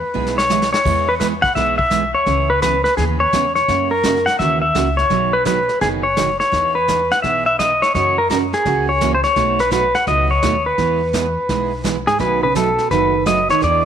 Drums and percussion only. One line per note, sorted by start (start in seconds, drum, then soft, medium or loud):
0.27 snare soft
0.39 snare medium
0.50 snare medium
0.50 hi-hat pedal medium
0.62 snare medium
0.74 snare medium
0.86 brush sweep soft
0.86 kick medium
0.86 snare soft
0.86 crash medium
1.21 kick soft
1.21 snare medium
1.21 hi-hat pedal medium
1.44 kick medium
1.44 snare soft
1.56 brush sweep medium
1.56 kick soft
1.56 snare soft
1.79 kick medium
1.91 kick soft
1.91 snare medium
1.91 hi-hat pedal medium
2.27 brush sweep medium
2.27 kick soft
2.27 snare soft
2.62 kick soft
2.62 snare medium
2.62 hi-hat pedal medium
2.85 snare soft
2.97 brush sweep soft
2.97 kick soft
2.97 snare soft
3.33 kick soft
3.33 snare medium
3.33 hi-hat pedal medium
3.56 snare soft
3.68 brush sweep soft
3.68 kick soft
3.68 snare soft
4.04 kick soft
4.04 snare medium
4.04 hi-hat pedal medium
4.16 snare soft
4.27 snare soft
4.40 brush sweep soft
4.40 kick soft
4.40 snare soft
4.75 kick soft
4.75 snare medium
4.75 hi-hat pedal medium
4.99 snare soft
5.10 brush sweep soft
5.10 kick soft
5.10 snare soft
5.46 kick soft
5.46 snare medium
5.46 hi-hat pedal medium
5.69 snare soft
5.82 brush sweep soft
5.82 kick soft
5.82 snare soft
6.17 kick soft
6.17 snare medium
6.17 hi-hat pedal medium
6.40 snare soft
6.53 brush sweep medium
6.53 kick soft
6.53 snare soft
6.88 kick soft
6.88 snare medium
6.88 hi-hat pedal medium
7.11 snare soft
7.24 brush sweep soft
7.24 kick soft
7.24 snare soft
7.59 kick soft
7.59 snare medium
7.59 hi-hat pedal medium
7.82 snare soft
7.95 brush sweep soft
7.95 kick soft
7.95 snare soft
8.30 kick soft
8.30 snare medium
8.30 hi-hat pedal medium
8.53 snare soft
8.65 brush sweep soft
8.65 kick soft
8.65 snare soft
9.01 kick soft
9.01 snare medium
9.01 hi-hat pedal medium
9.24 snare soft
9.36 brush sweep medium
9.36 kick soft
9.36 snare soft
9.59 snare soft
9.72 kick soft
9.72 snare medium
9.72 hi-hat pedal medium
9.94 snare soft
10.07 brush sweep medium
10.07 kick soft
10.07 snare soft
10.43 kick soft
10.43 snare medium
10.43 hi-hat pedal medium
10.78 brush sweep soft
10.78 kick soft
10.78 snare soft
11.14 kick soft
11.14 snare medium
11.14 hi-hat pedal medium
11.49 brush sweep soft
11.49 kick soft
11.49 snare soft
11.84 kick soft
11.84 snare medium
11.84 hi-hat pedal medium
12.07 snare soft
12.20 brush sweep medium
12.20 kick soft
12.20 snare soft
12.55 kick soft
12.55 snare medium
12.55 hi-hat pedal medium
12.78 snare soft
12.91 brush sweep medium
12.91 kick soft
12.91 snare soft
13.26 kick soft
13.26 snare medium
13.26 hi-hat pedal medium
13.49 snare soft
13.62 brush sweep soft
13.62 kick soft
13.62 snare soft